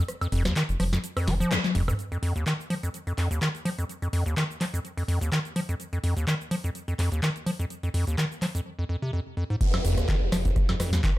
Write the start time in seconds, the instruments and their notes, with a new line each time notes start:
0.08 cross-stick, closed hi-hat, cabasa
0.21 acid bass F2, closed hi-hat, cabasa, high woodblock
0.32 analog synth bass F1, acid bass F2, open hi-hat
0.45 acid bass D#2, cross-stick, snare, closed hi-hat, cabasa
0.56 acid bass D#3, clap, closed hi-hat, cabasa
0.69 analog synth bass F1, closed hi-hat, cabasa
0.80 analog synth bass F1, acid bass F3, cross-stick, open hi-hat
0.93 acid bass F2, snare, closed hi-hat, cabasa
1.04 closed hi-hat, cabasa
1.17 acid bass F2, cross-stick, open hi-hat, cabasa, high woodblock
1.27 analog synth bass F1, acid bass F3, snare, open hi-hat
1.40 acid bass F3, closed hi-hat, cabasa
1.51 acid bass D#2, cross-stick, clap, closed hi-hat, high tom, cabasa
1.64 snare, clap, high tom, cabasa
1.75 analog synth bass F1, acid bass F2, open hi-hat
1.88 acid bass F2, cross-stick, mid tom, cabasa, high woodblock
1.99 closed hi-hat, cabasa
2.12 acid bass F2, closed hi-hat, cabasa
2.23 acid bass F2, open hi-hat
2.36 acid bass D#2, closed hi-hat, cabasa
2.46 acid bass D#3, clap, closed hi-hat, cabasa
2.60 cabasa
2.70 acid bass F3, open hi-hat
2.83 acid bass F2, closed hi-hat, cabasa
2.94 closed hi-hat, cabasa
3.07 acid bass F2, closed hi-hat, cabasa
3.18 acid bass F2, clap, open hi-hat
3.31 acid bass D#2, closed hi-hat, cabasa
3.42 acid bass D#3, clap, closed hi-hat, cabasa
3.55 closed hi-hat, cabasa
3.65 acid bass F3, open hi-hat
3.79 acid bass F2, closed hi-hat, cabasa
3.89 closed hi-hat, cabasa
4.02 acid bass F2, closed hi-hat, cabasa
4.13 acid bass F2, open hi-hat
4.26 acid bass D#2, closed hi-hat, cabasa
4.37 acid bass D#3, clap, closed hi-hat, cabasa
4.51 cabasa
4.61 acid bass F3, clap, open hi-hat
4.74 acid bass F2, closed hi-hat, cabasa
4.85 closed hi-hat, cabasa
4.97 acid bass F2, open hi-hat, cabasa
5.08 acid bass F2, open hi-hat
5.21 acid bass D#2, closed hi-hat, cabasa
5.32 acid bass D#3, clap, closed hi-hat, cabasa
5.45 closed hi-hat, cabasa
5.56 acid bass F3, open hi-hat
5.69 acid bass F2, closed hi-hat, cabasa
5.80 closed hi-hat, cabasa
5.93 acid bass F2, closed hi-hat, cabasa
6.04 acid bass F2, open hi-hat
6.17 acid bass D#2, closed hi-hat, cabasa
6.27 acid bass D#3, clap, closed hi-hat, cabasa
6.41 cabasa
6.51 acid bass F3, open hi-hat
6.64 acid bass F2, closed hi-hat, cabasa
6.75 closed hi-hat, cabasa
6.88 acid bass F2, closed hi-hat, cabasa
6.99 acid bass F2, clap, open hi-hat
7.12 acid bass D#2, closed hi-hat, cabasa
7.23 acid bass D#3, clap, closed hi-hat, cabasa
7.36 closed hi-hat, cabasa
7.46 acid bass F3, open hi-hat
7.59 acid bass F2, closed hi-hat, cabasa
7.70 closed hi-hat, cabasa
7.83 acid bass F2, closed hi-hat, cabasa
7.94 acid bass F2, open hi-hat
8.07 acid bass D#2, closed hi-hat, cabasa
8.18 acid bass D#3, clap, closed hi-hat, cabasa
8.32 cabasa
8.42 acid bass F3, clap, open hi-hat
8.55 acid bass F2, closed hi-hat, cabasa
8.79 acid bass F2
8.89 acid bass F2
9.02 acid bass C3
9.13 acid bass F2
9.37 acid bass F2
9.50 acid bass G#2
9.61 kick, closed hi-hat, crash, downlifter, cabasa
9.74 acid bass F2, cross-stick, snare, high woodblock
9.85 analog synth bass F1, acid bass F2, open hi-hat, cabasa
9.98 acid bass D#2, cross-stick, closed hi-hat, cabasa
10.08 acid bass D#3, kick, clap, closed hi-hat, cabasa
10.21 analog synth bass F1
10.32 analog synth bass F1, acid bass F3, cross-stick, snare, open hi-hat, cabasa
10.45 acid bass F2, kick, closed hi-hat, cabasa
10.56 kick, cross-stick, closed hi-hat, cabasa
10.69 acid bass F2, snare, high woodblock
10.80 analog synth bass F2, acid bass F2, cross-stick, snare, open hi-hat, cabasa
10.93 acid bass D#2, snare, closed hi-hat, cabasa
11.04 acid bass D#3, kick, clap, closed hi-hat, cabasa